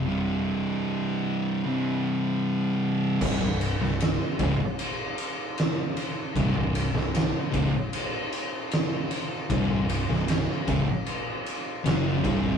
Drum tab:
CC |----------------|x---------------|----------------|----------------|
RD |----------------|--x-x-x-x-x-x-x-|x-x-x-x-x-x-x-x-|x-x-x-x-x-x-x-x-|
SD |----------------|---oo-------o---|---oo-------o---|---oo-------o---|
BD |----------------|o-----o---------|o-----o---------|o-----o-------o-|